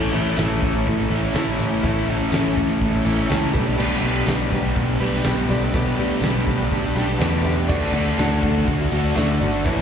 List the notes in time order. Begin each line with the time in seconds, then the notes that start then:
Already playing: A1 A2 E3 A3 C#4 E4 A4 C#5
0.02 tambourine
0.12 A1 E3 A3 C#4 E4 A4, open hi-hat, tambourine
0.26 tambourine
0.36 A1 A2 E3 A3 C#4 E4 A4, snare, open hi-hat, tambourine
0.49 tambourine
0.61 A1 C#4 E4 A4, kick, open hi-hat, tambourine
0.73 A3 C#4 E4, tambourine
0.86 A1, kick, open hi-hat, tambourine
0.98 A3 C#4 E4, tambourine
1.09 A1 E3 A3 C#4 E4 A4, open hi-hat, tambourine
1.24 tambourine
1.33 A1 A2 E3 A3 C#4 E4 A4 C#5, snare, open hi-hat, tambourine
1.37 A4
1.57 A1 E3 A3 C#4 E4 A4 C#5, open hi-hat, tambourine
1.70 A3 C#4 E4
1.82 A1 A2 E3 A3 C#4 E4 A4 C#5, kick, open hi-hat
1.86 A4, tambourine
1.97 snare, tambourine
2.05 E3 A3 C#4 E4 A4, open hi-hat
2.11 C#4
2.23 tambourine
2.30 A1 A2 E3 A3 C#4 E4, snare, open hi-hat, tambourine
2.36 A4
2.46 tambourine
2.56 A1 C#4 E4 A4, kick, open hi-hat, tambourine
2.68 A3 C#4 E4
2.81 A1, kick, open hi-hat, tambourine
2.93 A3 C#4 E4, tambourine
3.03 A1 E3 A3 C#4 E4 A4 A5, open hi-hat, tambourine
3.19 tambourine
3.28 C#2 A2 E3 A3 C#4 E4 A4 C#5 G5, snare, open hi-hat, tambourine
3.33 A4
3.44 tambourine
3.52 B1 G3 A3 D4 G4 A4 B4, kick, open hi-hat, tambourine
3.56 B3
3.65 A3 D4 G4
3.69 tambourine
3.78 B1 B2 G3 A3 B3 D4 G4 B4, crash, tambourine
3.92 tambourine
4.01 B1 G3 A3 D4 G4 B4, open hi-hat, tambourine
4.18 tambourine
4.26 B1 B2 G3 A3 B3 D4 G4, snare, open hi-hat, tambourine
4.30 B4
4.42 tambourine
4.52 B1 D4 G4 B4, kick, open hi-hat, tambourine
4.62 A3 D4 G4
4.76 B1, kick, open hi-hat, tambourine
4.87 A3 D4 G4
4.92 tambourine
4.99 B1 G3 A3 D4 G4 B4, open hi-hat
5.04 tambourine
5.17 tambourine
5.24 B1 B2 G3 A3 B3 D4 G4 A4 B4, snare, open hi-hat
5.28 B4, tambourine
5.49 B1 G3 A3 D4 G4 A4 D5, open hi-hat, tambourine
5.61 A3 D4 G4
5.73 B1 B2 G3 A3 B3 D4 G4 A4 B4, kick, open hi-hat, tambourine
5.88 tambourine
5.97 G3 A3 D4 G4 B4, open hi-hat, tambourine
6.09 tambourine
6.21 B1 B2 G3 A3 B3 D4 G4 B4, snare, open hi-hat, tambourine
6.34 tambourine
6.46 B1 D4 G4 B4 B5, kick, open hi-hat, tambourine
6.57 A3 D4 G4, tambourine
6.70 B1 A5, kick, open hi-hat, tambourine
6.82 A3 D4 G4, tambourine
6.94 B1 G3 A3 D4 G4 B4 G5, snare, open hi-hat, tambourine
7.07 tambourine
7.17 E2 B2 G3 A3 B3 D4 G4 A4 B4 F#5, tambourine
7.22 B4, snare
7.42 G3 A3 D4 G4 A4 B4 E5, tambourine
7.46 open hi-hat
7.56 A3 D4 G4
7.66 D2 D3 A3 D4 F#4 A4 D5, kick, crash, tambourine
7.71 F#4
7.81 snare, tambourine
7.92 D2 D3 A3 D4 F#4 A4, open hi-hat, tambourine
8.05 tambourine
8.16 D2 D3 A3 D4 F#4, snare, open hi-hat, tambourine
8.20 A4
8.30 tambourine
8.41 D2 D4 F#4 A4, kick, open hi-hat, tambourine
8.54 A3 D4 F#4, tambourine
8.66 D2, kick, open hi-hat, tambourine
8.79 A3 D4 F#4, tambourine
8.90 D2 D3 A3 D4 F#4 A4, open hi-hat, tambourine
9.03 tambourine
9.14 D2 D3 A3 D4 F#4 A4 E5, snare, open hi-hat, tambourine
9.39 G1 D3 A3 D4 F#4 A4 D5, open hi-hat, tambourine
9.52 A3 D4 F#4
9.63 A1 A2 E3 A3 B3 C#4 E4 A4 B4 C#5, kick, snare, tambourine